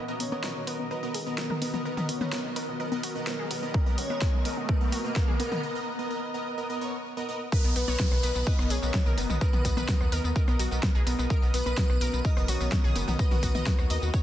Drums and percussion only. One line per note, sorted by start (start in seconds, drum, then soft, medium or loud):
0.20 open hi-hat loud
0.32 high conga medium
0.44 snare loud
0.67 open hi-hat medium
1.14 open hi-hat loud
1.38 snare loud
1.50 mid tom medium
1.62 open hi-hat medium
1.62 high conga medium
1.74 mid tom medium
1.97 mid tom medium
2.09 open hi-hat loud
2.21 mid tom medium
2.21 high conga medium
2.32 snare loud
2.56 open hi-hat medium
2.92 high conga medium
3.03 open hi-hat loud
3.27 snare loud
3.51 open hi-hat medium
3.74 kick loud
3.98 open hi-hat loud
4.10 high conga medium
4.21 kick loud
4.21 snare loud
4.45 open hi-hat medium
4.69 kick loud
4.92 open hi-hat loud
5.16 kick loud
5.16 snare loud
5.28 mid tom medium
5.40 open hi-hat loud
5.40 high conga medium
5.52 mid tom medium
7.52 kick loud
7.52 tambourine soft
7.65 tambourine soft
7.76 open hi-hat loud
7.76 tambourine medium
7.88 tambourine soft
7.88 high conga medium
8.00 kick loud
8.00 snare loud
8.00 tambourine soft
8.12 cross-stick medium
8.12 tambourine soft
8.23 open hi-hat medium
8.23 tambourine medium
8.36 tambourine soft
8.47 kick loud
8.47 tambourine soft
8.59 cross-stick medium
8.59 tambourine soft
8.70 open hi-hat loud
8.70 tambourine medium
8.83 tambourine soft
8.94 kick loud
8.94 snare loud
8.94 tambourine soft
9.06 mid tom medium
9.06 tambourine soft
9.18 open hi-hat medium
9.18 tambourine medium
9.18 high conga loud
9.30 mid tom medium
9.30 tambourine soft
9.41 kick loud
9.41 tambourine soft
9.53 mid tom loud
9.53 tambourine soft
9.65 kick medium
9.65 open hi-hat loud
9.65 tambourine medium
9.77 mid tom medium
9.77 tambourine soft
9.77 high conga medium
9.88 kick loud
9.88 snare loud
9.88 tambourine soft
10.01 cross-stick medium
10.01 tambourine soft
10.12 open hi-hat medium
10.12 tambourine medium
10.25 tambourine soft
10.36 kick loud
10.36 tambourine soft
10.48 cross-stick medium
10.48 tambourine soft
10.48 high conga medium
10.59 open hi-hat loud
10.59 tambourine medium
10.72 tambourine soft
10.83 kick loud
10.83 snare loud
10.83 tambourine soft
10.96 tambourine soft
11.07 open hi-hat loud
11.07 tambourine medium
11.19 tambourine soft
11.30 kick loud
11.30 tambourine soft
11.43 tambourine soft
11.54 open hi-hat loud
11.54 tambourine medium
11.66 tambourine soft
11.66 high conga medium
11.77 kick loud
11.77 snare loud
11.77 tambourine soft
11.90 cross-stick medium
11.90 tambourine soft
12.01 open hi-hat loud
12.01 tambourine medium
12.14 tambourine soft
12.25 kick loud
12.25 tambourine soft
12.37 cross-stick medium
12.37 tambourine soft
12.48 open hi-hat loud
12.48 tambourine medium
12.61 tambourine soft
12.72 kick loud
12.72 snare loud
12.72 tambourine soft
12.84 mid tom medium
12.84 tambourine soft
12.96 open hi-hat loud
12.96 tambourine medium
12.96 high conga loud
13.08 mid tom medium
13.08 tambourine soft
13.19 kick loud
13.19 tambourine soft
13.31 mid tom loud
13.31 tambourine soft
13.43 kick medium
13.43 open hi-hat loud
13.43 tambourine medium
13.55 mid tom medium
13.55 tambourine soft
13.55 high conga medium
13.66 kick loud
13.66 snare loud
13.66 tambourine soft
13.79 cross-stick medium
13.79 tambourine soft
13.90 open hi-hat medium
13.90 tambourine medium
14.03 tambourine soft
14.14 kick loud
14.14 tambourine soft